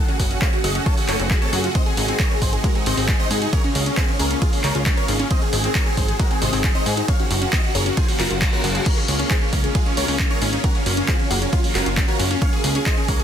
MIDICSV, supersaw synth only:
0, 0, Header, 1, 2, 480
1, 0, Start_track
1, 0, Key_signature, -5, "major"
1, 0, Tempo, 444444
1, 1891, Time_signature, 4, 2, 24, 8
1, 14296, End_track
2, 0, Start_track
2, 0, Title_t, "Supersaw synth"
2, 0, Program_c, 0, 81
2, 90, Note_on_c, 0, 66, 63
2, 183, Note_off_c, 0, 66, 0
2, 210, Note_on_c, 0, 66, 65
2, 303, Note_off_c, 0, 66, 0
2, 331, Note_on_c, 0, 66, 61
2, 424, Note_off_c, 0, 66, 0
2, 450, Note_on_c, 0, 73, 76
2, 450, Note_on_c, 0, 77, 88
2, 543, Note_off_c, 0, 73, 0
2, 543, Note_off_c, 0, 77, 0
2, 571, Note_on_c, 0, 66, 62
2, 664, Note_off_c, 0, 66, 0
2, 690, Note_on_c, 0, 66, 78
2, 691, Note_on_c, 0, 75, 95
2, 783, Note_off_c, 0, 66, 0
2, 784, Note_off_c, 0, 75, 0
2, 811, Note_on_c, 0, 66, 65
2, 904, Note_off_c, 0, 66, 0
2, 930, Note_on_c, 0, 69, 76
2, 930, Note_on_c, 0, 73, 87
2, 1023, Note_off_c, 0, 69, 0
2, 1023, Note_off_c, 0, 73, 0
2, 1052, Note_on_c, 0, 66, 64
2, 1144, Note_off_c, 0, 66, 0
2, 1171, Note_on_c, 0, 69, 82
2, 1171, Note_on_c, 0, 73, 99
2, 1264, Note_off_c, 0, 69, 0
2, 1264, Note_off_c, 0, 73, 0
2, 1291, Note_on_c, 0, 66, 60
2, 1384, Note_off_c, 0, 66, 0
2, 1411, Note_on_c, 0, 66, 64
2, 1504, Note_off_c, 0, 66, 0
2, 1531, Note_on_c, 0, 73, 97
2, 1532, Note_on_c, 0, 69, 78
2, 1624, Note_off_c, 0, 69, 0
2, 1624, Note_off_c, 0, 73, 0
2, 1651, Note_on_c, 0, 66, 67
2, 1744, Note_off_c, 0, 66, 0
2, 1771, Note_on_c, 0, 66, 65
2, 1864, Note_off_c, 0, 66, 0
2, 1891, Note_on_c, 0, 75, 97
2, 1892, Note_on_c, 0, 72, 79
2, 1984, Note_off_c, 0, 72, 0
2, 1984, Note_off_c, 0, 75, 0
2, 2010, Note_on_c, 0, 68, 65
2, 2104, Note_off_c, 0, 68, 0
2, 2131, Note_on_c, 0, 68, 69
2, 2224, Note_off_c, 0, 68, 0
2, 2253, Note_on_c, 0, 68, 65
2, 2345, Note_off_c, 0, 68, 0
2, 2374, Note_on_c, 0, 70, 76
2, 2374, Note_on_c, 0, 73, 91
2, 2465, Note_off_c, 0, 70, 0
2, 2465, Note_off_c, 0, 73, 0
2, 2494, Note_on_c, 0, 68, 63
2, 2586, Note_off_c, 0, 68, 0
2, 2613, Note_on_c, 0, 68, 80
2, 2613, Note_on_c, 0, 72, 95
2, 2705, Note_off_c, 0, 68, 0
2, 2705, Note_off_c, 0, 72, 0
2, 2735, Note_on_c, 0, 68, 63
2, 2826, Note_off_c, 0, 68, 0
2, 2853, Note_on_c, 0, 70, 91
2, 2854, Note_on_c, 0, 66, 73
2, 2945, Note_off_c, 0, 66, 0
2, 2945, Note_off_c, 0, 70, 0
2, 2975, Note_on_c, 0, 68, 62
2, 3066, Note_off_c, 0, 68, 0
2, 3095, Note_on_c, 0, 72, 77
2, 3095, Note_on_c, 0, 75, 96
2, 3186, Note_off_c, 0, 72, 0
2, 3186, Note_off_c, 0, 75, 0
2, 3214, Note_on_c, 0, 68, 65
2, 3305, Note_off_c, 0, 68, 0
2, 3336, Note_on_c, 0, 68, 67
2, 3427, Note_off_c, 0, 68, 0
2, 3454, Note_on_c, 0, 75, 97
2, 3455, Note_on_c, 0, 72, 77
2, 3545, Note_off_c, 0, 75, 0
2, 3546, Note_off_c, 0, 72, 0
2, 3573, Note_on_c, 0, 68, 67
2, 3665, Note_off_c, 0, 68, 0
2, 3691, Note_on_c, 0, 68, 67
2, 3784, Note_off_c, 0, 68, 0
2, 3813, Note_on_c, 0, 70, 78
2, 3813, Note_on_c, 0, 73, 102
2, 3905, Note_off_c, 0, 70, 0
2, 3905, Note_off_c, 0, 73, 0
2, 3931, Note_on_c, 0, 61, 64
2, 4024, Note_off_c, 0, 61, 0
2, 4051, Note_on_c, 0, 61, 64
2, 4144, Note_off_c, 0, 61, 0
2, 4170, Note_on_c, 0, 61, 65
2, 4264, Note_off_c, 0, 61, 0
2, 4289, Note_on_c, 0, 68, 78
2, 4289, Note_on_c, 0, 72, 92
2, 4383, Note_off_c, 0, 68, 0
2, 4383, Note_off_c, 0, 72, 0
2, 4410, Note_on_c, 0, 61, 65
2, 4503, Note_off_c, 0, 61, 0
2, 4528, Note_on_c, 0, 70, 93
2, 4529, Note_on_c, 0, 61, 81
2, 4623, Note_off_c, 0, 61, 0
2, 4623, Note_off_c, 0, 70, 0
2, 4651, Note_on_c, 0, 61, 64
2, 4744, Note_off_c, 0, 61, 0
2, 4770, Note_on_c, 0, 68, 93
2, 4771, Note_on_c, 0, 65, 77
2, 4864, Note_off_c, 0, 65, 0
2, 4864, Note_off_c, 0, 68, 0
2, 4892, Note_on_c, 0, 61, 63
2, 4984, Note_off_c, 0, 61, 0
2, 5012, Note_on_c, 0, 73, 99
2, 5013, Note_on_c, 0, 70, 82
2, 5105, Note_off_c, 0, 70, 0
2, 5105, Note_off_c, 0, 73, 0
2, 5132, Note_on_c, 0, 61, 66
2, 5224, Note_off_c, 0, 61, 0
2, 5251, Note_on_c, 0, 61, 67
2, 5344, Note_off_c, 0, 61, 0
2, 5370, Note_on_c, 0, 70, 77
2, 5370, Note_on_c, 0, 73, 97
2, 5464, Note_off_c, 0, 70, 0
2, 5464, Note_off_c, 0, 73, 0
2, 5490, Note_on_c, 0, 61, 68
2, 5583, Note_off_c, 0, 61, 0
2, 5611, Note_on_c, 0, 61, 67
2, 5704, Note_off_c, 0, 61, 0
2, 5730, Note_on_c, 0, 72, 77
2, 5730, Note_on_c, 0, 75, 105
2, 5823, Note_off_c, 0, 75, 0
2, 5824, Note_off_c, 0, 72, 0
2, 5850, Note_on_c, 0, 68, 65
2, 5943, Note_off_c, 0, 68, 0
2, 5970, Note_on_c, 0, 68, 69
2, 6063, Note_off_c, 0, 68, 0
2, 6091, Note_on_c, 0, 68, 66
2, 6184, Note_off_c, 0, 68, 0
2, 6210, Note_on_c, 0, 70, 78
2, 6210, Note_on_c, 0, 73, 90
2, 6303, Note_off_c, 0, 73, 0
2, 6304, Note_off_c, 0, 70, 0
2, 6330, Note_on_c, 0, 68, 65
2, 6423, Note_off_c, 0, 68, 0
2, 6451, Note_on_c, 0, 68, 78
2, 6451, Note_on_c, 0, 72, 91
2, 6544, Note_off_c, 0, 68, 0
2, 6544, Note_off_c, 0, 72, 0
2, 6569, Note_on_c, 0, 68, 65
2, 6663, Note_off_c, 0, 68, 0
2, 6691, Note_on_c, 0, 66, 78
2, 6691, Note_on_c, 0, 70, 86
2, 6784, Note_off_c, 0, 66, 0
2, 6784, Note_off_c, 0, 70, 0
2, 6811, Note_on_c, 0, 68, 65
2, 6904, Note_off_c, 0, 68, 0
2, 6930, Note_on_c, 0, 72, 77
2, 6931, Note_on_c, 0, 75, 93
2, 7023, Note_off_c, 0, 72, 0
2, 7024, Note_off_c, 0, 75, 0
2, 7051, Note_on_c, 0, 68, 62
2, 7144, Note_off_c, 0, 68, 0
2, 7169, Note_on_c, 0, 68, 67
2, 7263, Note_off_c, 0, 68, 0
2, 7289, Note_on_c, 0, 72, 82
2, 7289, Note_on_c, 0, 75, 98
2, 7383, Note_off_c, 0, 72, 0
2, 7383, Note_off_c, 0, 75, 0
2, 7409, Note_on_c, 0, 68, 63
2, 7503, Note_off_c, 0, 68, 0
2, 7530, Note_on_c, 0, 68, 63
2, 7623, Note_off_c, 0, 68, 0
2, 7650, Note_on_c, 0, 77, 101
2, 7651, Note_on_c, 0, 73, 78
2, 7744, Note_off_c, 0, 73, 0
2, 7744, Note_off_c, 0, 77, 0
2, 7770, Note_on_c, 0, 66, 68
2, 7863, Note_off_c, 0, 66, 0
2, 7889, Note_on_c, 0, 66, 68
2, 7983, Note_off_c, 0, 66, 0
2, 8007, Note_on_c, 0, 66, 65
2, 8102, Note_off_c, 0, 66, 0
2, 8127, Note_on_c, 0, 66, 77
2, 8128, Note_on_c, 0, 75, 90
2, 8222, Note_off_c, 0, 66, 0
2, 8222, Note_off_c, 0, 75, 0
2, 8247, Note_on_c, 0, 66, 68
2, 8342, Note_off_c, 0, 66, 0
2, 8367, Note_on_c, 0, 70, 84
2, 8368, Note_on_c, 0, 73, 96
2, 8462, Note_off_c, 0, 70, 0
2, 8462, Note_off_c, 0, 73, 0
2, 8488, Note_on_c, 0, 66, 64
2, 8582, Note_off_c, 0, 66, 0
2, 8607, Note_on_c, 0, 68, 79
2, 8607, Note_on_c, 0, 72, 85
2, 8702, Note_off_c, 0, 68, 0
2, 8702, Note_off_c, 0, 72, 0
2, 8728, Note_on_c, 0, 66, 64
2, 8822, Note_off_c, 0, 66, 0
2, 8848, Note_on_c, 0, 66, 84
2, 8848, Note_on_c, 0, 70, 96
2, 8942, Note_off_c, 0, 70, 0
2, 8943, Note_off_c, 0, 66, 0
2, 8969, Note_on_c, 0, 66, 62
2, 9063, Note_off_c, 0, 66, 0
2, 9089, Note_on_c, 0, 66, 69
2, 9183, Note_off_c, 0, 66, 0
2, 9209, Note_on_c, 0, 70, 93
2, 9210, Note_on_c, 0, 66, 80
2, 9303, Note_off_c, 0, 66, 0
2, 9303, Note_off_c, 0, 70, 0
2, 9329, Note_on_c, 0, 66, 65
2, 9423, Note_off_c, 0, 66, 0
2, 9448, Note_on_c, 0, 66, 63
2, 9542, Note_off_c, 0, 66, 0
2, 9570, Note_on_c, 0, 70, 78
2, 9570, Note_on_c, 0, 73, 101
2, 9663, Note_off_c, 0, 70, 0
2, 9663, Note_off_c, 0, 73, 0
2, 9689, Note_on_c, 0, 61, 64
2, 9783, Note_off_c, 0, 61, 0
2, 9809, Note_on_c, 0, 61, 67
2, 9903, Note_off_c, 0, 61, 0
2, 9928, Note_on_c, 0, 61, 61
2, 10023, Note_off_c, 0, 61, 0
2, 10048, Note_on_c, 0, 68, 76
2, 10048, Note_on_c, 0, 72, 88
2, 10142, Note_off_c, 0, 72, 0
2, 10143, Note_off_c, 0, 68, 0
2, 10168, Note_on_c, 0, 61, 65
2, 10262, Note_off_c, 0, 61, 0
2, 10289, Note_on_c, 0, 61, 79
2, 10289, Note_on_c, 0, 70, 93
2, 10383, Note_off_c, 0, 61, 0
2, 10383, Note_off_c, 0, 70, 0
2, 10409, Note_on_c, 0, 61, 65
2, 10503, Note_off_c, 0, 61, 0
2, 10528, Note_on_c, 0, 65, 77
2, 10529, Note_on_c, 0, 68, 92
2, 10622, Note_off_c, 0, 65, 0
2, 10623, Note_off_c, 0, 68, 0
2, 10648, Note_on_c, 0, 61, 65
2, 10742, Note_off_c, 0, 61, 0
2, 10769, Note_on_c, 0, 70, 79
2, 10769, Note_on_c, 0, 73, 96
2, 10863, Note_off_c, 0, 70, 0
2, 10863, Note_off_c, 0, 73, 0
2, 10889, Note_on_c, 0, 61, 63
2, 10983, Note_off_c, 0, 61, 0
2, 11007, Note_on_c, 0, 61, 67
2, 11102, Note_off_c, 0, 61, 0
2, 11127, Note_on_c, 0, 73, 94
2, 11128, Note_on_c, 0, 70, 78
2, 11222, Note_off_c, 0, 70, 0
2, 11222, Note_off_c, 0, 73, 0
2, 11248, Note_on_c, 0, 61, 66
2, 11342, Note_off_c, 0, 61, 0
2, 11369, Note_on_c, 0, 61, 65
2, 11463, Note_off_c, 0, 61, 0
2, 11489, Note_on_c, 0, 66, 75
2, 11489, Note_on_c, 0, 70, 104
2, 11583, Note_off_c, 0, 66, 0
2, 11583, Note_off_c, 0, 70, 0
2, 11609, Note_on_c, 0, 61, 65
2, 11703, Note_off_c, 0, 61, 0
2, 11728, Note_on_c, 0, 61, 67
2, 11822, Note_off_c, 0, 61, 0
2, 11847, Note_on_c, 0, 61, 67
2, 11942, Note_off_c, 0, 61, 0
2, 11966, Note_on_c, 0, 65, 77
2, 11967, Note_on_c, 0, 68, 92
2, 12061, Note_off_c, 0, 65, 0
2, 12062, Note_off_c, 0, 68, 0
2, 12087, Note_on_c, 0, 61, 63
2, 12182, Note_off_c, 0, 61, 0
2, 12208, Note_on_c, 0, 58, 85
2, 12209, Note_on_c, 0, 66, 93
2, 12302, Note_off_c, 0, 58, 0
2, 12303, Note_off_c, 0, 66, 0
2, 12329, Note_on_c, 0, 61, 66
2, 12423, Note_off_c, 0, 61, 0
2, 12446, Note_on_c, 0, 61, 76
2, 12447, Note_on_c, 0, 65, 86
2, 12542, Note_off_c, 0, 61, 0
2, 12542, Note_off_c, 0, 65, 0
2, 12567, Note_on_c, 0, 61, 67
2, 12662, Note_off_c, 0, 61, 0
2, 12689, Note_on_c, 0, 66, 83
2, 12689, Note_on_c, 0, 70, 96
2, 12783, Note_off_c, 0, 66, 0
2, 12783, Note_off_c, 0, 70, 0
2, 12807, Note_on_c, 0, 61, 63
2, 12902, Note_off_c, 0, 61, 0
2, 12927, Note_on_c, 0, 61, 68
2, 13022, Note_off_c, 0, 61, 0
2, 13046, Note_on_c, 0, 66, 75
2, 13046, Note_on_c, 0, 70, 96
2, 13141, Note_off_c, 0, 70, 0
2, 13142, Note_off_c, 0, 66, 0
2, 13167, Note_on_c, 0, 61, 68
2, 13262, Note_off_c, 0, 61, 0
2, 13287, Note_on_c, 0, 61, 66
2, 13382, Note_off_c, 0, 61, 0
2, 13408, Note_on_c, 0, 73, 76
2, 13408, Note_on_c, 0, 77, 97
2, 13502, Note_off_c, 0, 73, 0
2, 13502, Note_off_c, 0, 77, 0
2, 13528, Note_on_c, 0, 68, 66
2, 13622, Note_off_c, 0, 68, 0
2, 13647, Note_on_c, 0, 68, 67
2, 13742, Note_off_c, 0, 68, 0
2, 13771, Note_on_c, 0, 68, 65
2, 13864, Note_off_c, 0, 68, 0
2, 13889, Note_on_c, 0, 72, 77
2, 13890, Note_on_c, 0, 75, 89
2, 13983, Note_off_c, 0, 72, 0
2, 13983, Note_off_c, 0, 75, 0
2, 14011, Note_on_c, 0, 68, 67
2, 14104, Note_off_c, 0, 68, 0
2, 14130, Note_on_c, 0, 70, 81
2, 14130, Note_on_c, 0, 73, 92
2, 14223, Note_off_c, 0, 70, 0
2, 14224, Note_off_c, 0, 73, 0
2, 14250, Note_on_c, 0, 68, 66
2, 14296, Note_off_c, 0, 68, 0
2, 14296, End_track
0, 0, End_of_file